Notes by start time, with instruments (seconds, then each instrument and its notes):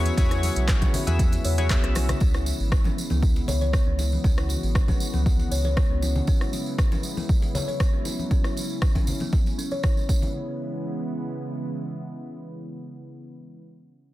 Already playing: analog synth bass E2, analog synth pad C#3 F#3 G#3 B3 E4, synth keys E4 F#4 G#4 C#5
0.05 closed hi-hat, tambourine, high conga
0.17 analog synth bass E2, kalimba C#4, synth keys E4 F#4 G#4 C#5, kick, closed hi-hat, tambourine, muted conga
0.31 kalimba E4, cross-stick, closed hi-hat, tambourine
0.43 open hi-hat, tambourine, muted conga
0.56 analog synth bass B1, closed hi-hat, tambourine
0.68 kick, cross-stick, clap, closed hi-hat, tambourine
0.81 kalimba C#4, kick, closed hi-hat, tambourine, muted conga, high conga
0.94 open hi-hat, tambourine, low conga
1.07 analog synth bass E2, kalimba B3, synth keys E4 F#4 G#4 E5, closed hi-hat, tambourine, muted conga, high conga
1.19 kick, closed hi-hat, tambourine, high conga
1.32 closed hi-hat, tambourine, muted conga
1.44 analog synth bass E2, kalimba C#5, open hi-hat, tambourine
1.58 synth keys E4 F#4 G#4 C#5, kalimba C#5, closed hi-hat, tambourine, muted conga
1.70 kalimba B3, synth keys E4 F#4 G#4 E5, kick, cross-stick, clap, closed hi-hat, tambourine, high conga
1.83 analog synth bass B1, kalimba C#4, cross-stick, closed hi-hat
1.95 kalimba E4, cross-stick, open hi-hat, tambourine, muted conga, high conga
2.09 cross-stick, closed hi-hat, tambourine, low conga
2.20 analog synth bass C#2, analog synth pad C#3 E3 G#3 B3 E4, kalimba C#4, kick, tambourine, muted conga
2.34 kalimba E4, cross-stick, tambourine
2.46 tambourine, muted conga
2.60 analog synth bass G#1, tambourine
2.72 kick, cross-stick, tambourine
2.84 kalimba C#4, tambourine, muted conga, high conga
2.98 tambourine
3.10 analog synth bass C#2, kalimba B3, tambourine, muted conga, high conga
3.23 kick, tambourine
3.36 tambourine, muted conga
3.48 analog synth bass C#2, kalimba C#5, tambourine, low conga
3.61 kalimba C#5, tambourine, muted conga
3.73 kalimba B3, kick, cross-stick, tambourine
3.87 analog synth bass C#2, kalimba C#4
3.99 kalimba E4, tambourine, muted conga
4.12 tambourine, high conga
4.24 analog synth bass C#2, kalimba C#4, analog synth pad F#4, kick, tambourine, muted conga
4.38 kalimba E4, cross-stick, tambourine
4.49 tambourine, muted conga
4.63 analog synth bass G#1, tambourine
4.75 kick, cross-stick, tambourine
4.88 kalimba C#4, kick, tambourine, muted conga, high conga
5.00 tambourine
5.14 analog synth bass C#2, kalimba B3, tambourine, muted conga, high conga
5.26 kick, tambourine, high conga
5.39 tambourine, muted conga
5.51 analog synth bass C#2, kalimba C#5, tambourine
5.64 kalimba C#5, tambourine, muted conga
5.77 kalimba B3, kick, cross-stick, tambourine, high conga
5.90 analog synth bass C#2, kalimba C#4
6.02 kalimba E4, tambourine, muted conga
6.16 tambourine, low conga
6.27 analog synth pad F#3 E4, kalimba C#4, kick, tambourine, muted conga
6.41 kalimba E4, cross-stick, tambourine
6.53 tambourine, muted conga
6.66 tambourine
6.78 kick, cross-stick, tambourine
6.92 kalimba C#4, tambourine, muted conga, high conga
7.03 tambourine
7.17 kalimba B3, tambourine, muted conga, high conga
7.29 kick, tambourine
7.42 tambourine, muted conga
7.55 kalimba C#5, tambourine, low conga
7.68 kalimba C#5, tambourine, muted conga
7.80 kalimba B3, kick, cross-stick, tambourine
7.93 kalimba C#4
8.05 kalimba E4, tambourine, muted conga
8.19 tambourine, high conga
8.31 kalimba C#4, analog synth pad C#4, kick, tambourine, muted conga
8.44 kalimba E4, cross-stick, tambourine
8.57 tambourine, muted conga
8.70 tambourine
8.82 kick, cross-stick, tambourine
8.95 kalimba C#4, kick, tambourine, muted conga, high conga
9.07 tambourine, low conga
9.20 kalimba B3, tambourine, muted conga, high conga
9.32 kick, tambourine, high conga
9.46 tambourine, muted conga
9.58 kalimba C#4, tambourine
9.71 kalimba C#5, tambourine, muted conga
9.83 kalimba E4, kick, cross-stick, tambourine, high conga
9.97 kalimba C#4, tambourine
10.09 analog synth pad C#3 E3 G#3 B3 E4, kalimba C#4, kick, tambourine, muted conga
10.22 tambourine, low conga